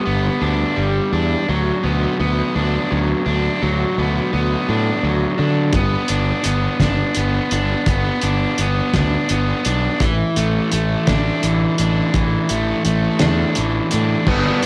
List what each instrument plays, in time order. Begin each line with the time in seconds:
Already playing: overdriven electric guitar G3 D4
0.05 fingered electric bass G1, overdriven electric guitar B3
0.41 fingered electric bass D2, overdriven electric guitar D4
0.76 fingered electric bass G1, overdriven electric guitar G3
1.13 fingered electric bass E2, overdriven electric guitar D4
1.49 fingered electric bass D2, overdriven electric guitar F#3
1.84 fingered electric bass D2, overdriven electric guitar B3
2.20 fingered electric bass D2, overdriven electric guitar B3
2.55 fingered electric bass D2, overdriven electric guitar D4
2.91 fingered electric bass D2, overdriven electric guitar F#3
3.26 fingered electric bass D2, overdriven electric guitar D4
3.62 fingered electric bass D2, overdriven electric guitar F#3
3.98 fingered electric bass D2, overdriven electric guitar B3
4.33 fingered electric bass D2, overdriven electric guitar B3
4.69 fingered electric bass A2, overdriven electric guitar D4
5.03 fingered electric bass D2, overdriven electric guitar F#3
5.38 fingered electric bass D3, overdriven electric guitar D4
5.73 fingered electric bass G1, overdriven electric guitar B3, kick, closed hi-hat
6.08 fingered electric bass G1, overdriven electric guitar D4, closed hi-hat
6.43 fingered electric bass G1, overdriven electric guitar B3, closed hi-hat
6.80 fingered electric bass G1, overdriven electric guitar D4, kick, snare, closed hi-hat
7.15 fingered electric bass G1, overdriven electric guitar B3, closed hi-hat
7.51 fingered electric bass G1, overdriven electric guitar D4, closed hi-hat
7.86 fingered electric bass G1, overdriven electric guitar B3, kick, closed hi-hat
8.22 fingered electric bass G1, overdriven electric guitar D4, closed hi-hat
8.58 fingered electric bass G1, overdriven electric guitar B3, closed hi-hat
8.94 fingered electric bass D2, overdriven electric guitar D4, kick, snare, closed hi-hat
9.29 fingered electric bass G1, overdriven electric guitar B3, closed hi-hat
9.65 fingered electric bass B1, overdriven electric guitar D4, closed hi-hat
10.00 fingered electric bass A1, overdriven electric guitar E3, kick, closed hi-hat
10.36 fingered electric bass A1, overdriven electric guitar A3, closed hi-hat
10.72 fingered electric bass A1, overdriven electric guitar A3, closed hi-hat
11.07 fingered electric bass A1, overdriven electric guitar D4, kick, snare, closed hi-hat
11.43 fingered electric bass A1, overdriven electric guitar E3, closed hi-hat
11.78 fingered electric bass A1, overdriven electric guitar D4, closed hi-hat
12.14 fingered electric bass A1, overdriven electric guitar E3, kick, closed hi-hat
12.49 fingered electric bass A1, overdriven electric guitar A3, closed hi-hat
12.85 fingered electric bass A1, overdriven electric guitar A3, closed hi-hat
13.19 fingered electric bass E2, overdriven electric guitar D4, snare, closed hi-hat
13.55 fingered electric bass A1, overdriven electric guitar E3, closed hi-hat
13.91 fingered electric bass A2, overdriven electric guitar D4, closed hi-hat
14.27 fingered electric bass G1, overdriven electric guitar G2 D3 G3 B3 D4, kick, crash
14.63 overdriven electric guitar D4, closed hi-hat